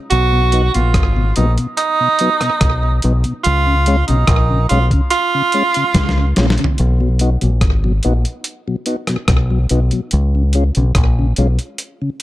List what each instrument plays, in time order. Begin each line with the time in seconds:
0.10 fingered electric bass B1, tenor saxophone F#4, closed hi-hat
0.33 tonewheel organ B2
0.52 tonewheel organ F#3 B3 D#4, closed hi-hat
0.74 fingered electric bass A#1, tonewheel organ B2, tenor saxophone F4, closed hi-hat
0.94 fingered electric bass G#1, kick, cross-stick, closed hi-hat
1.17 tonewheel organ B2
1.36 fingered electric bass A#1, tonewheel organ F#3 B3 D#4, tenor saxophone D#4, closed hi-hat
1.58 tonewheel organ B2, closed hi-hat
1.77 tenor saxophone D#4, closed hi-hat
2.00 tonewheel organ B2
2.19 tonewheel organ F#3 B3 D#4, closed hi-hat
2.41 tonewheel organ B2, cross-stick, closed hi-hat
2.61 fingered electric bass B1, kick, cross-stick, closed hi-hat
2.83 tonewheel organ B2
3.02 fingered electric bass B1, tonewheel organ F#3 B3 D#4, closed hi-hat
3.24 tonewheel organ B2, closed hi-hat
3.44 fingered electric bass C#2, tenor saxophone F4, closed hi-hat
3.67 tonewheel organ C#3
3.86 tonewheel organ G#3 C#4 F4, closed hi-hat
4.07 fingered electric bass B1, tonewheel organ C#3, tenor saxophone D#4, closed hi-hat
4.27 fingered electric bass A#1, kick, cross-stick, closed hi-hat
4.50 tonewheel organ C#3
4.69 fingered electric bass B1, tonewheel organ G#3 C#4 F4, tenor saxophone F4, closed hi-hat
4.91 tonewheel organ C#3, kick, closed hi-hat
5.10 tenor saxophone F4, closed hi-hat
5.35 tonewheel organ C#3
5.52 tonewheel organ G#3 C#4 F4, closed hi-hat
5.74 tonewheel organ C#3, closed hi-hat
5.94 fingered electric bass C#2, kick, snare, closed hi-hat
6.09 snare
6.18 tonewheel organ C#3
6.36 fingered electric bass A#1, tonewheel organ G#3 C#4 F4, snare, closed hi-hat
6.50 snare
6.58 tonewheel organ C#3, closed hi-hat
6.64 floor tom
6.78 fingered electric bass B1, closed hi-hat
7.00 tonewheel organ B2 F#3
7.19 tonewheel organ B3 D#4 F#4, closed hi-hat
7.41 fingered electric bass A#1, tonewheel organ B2 F#3, closed hi-hat
7.61 fingered electric bass G#1, kick, cross-stick, closed hi-hat
7.84 tonewheel organ B2 F#3
8.03 fingered electric bass A#1, tonewheel organ B3 D#4 F#4, closed hi-hat
8.25 closed hi-hat
8.44 closed hi-hat
8.68 tonewheel organ B2 F#3
8.86 tonewheel organ B3 D#4 F#4, closed hi-hat
9.07 tonewheel organ B2 F#3, cross-stick, closed hi-hat
9.28 fingered electric bass B1, kick, cross-stick, closed hi-hat
9.50 tonewheel organ B2 F#3
9.69 fingered electric bass B1, tonewheel organ B3 D#4 F#4, closed hi-hat
9.91 tonewheel organ B2 F#3, closed hi-hat
10.11 fingered electric bass C#2, closed hi-hat
10.35 tonewheel organ C#3
10.53 tonewheel organ G#3 C#4 F4, closed hi-hat
10.75 fingered electric bass B1, tonewheel organ C#3, closed hi-hat
10.95 fingered electric bass A#1, kick, cross-stick, closed hi-hat
11.19 tonewheel organ C#3
11.36 fingered electric bass B1, tonewheel organ G#3 C#4 F4, closed hi-hat
11.59 closed hi-hat
11.78 closed hi-hat
12.02 tonewheel organ C#3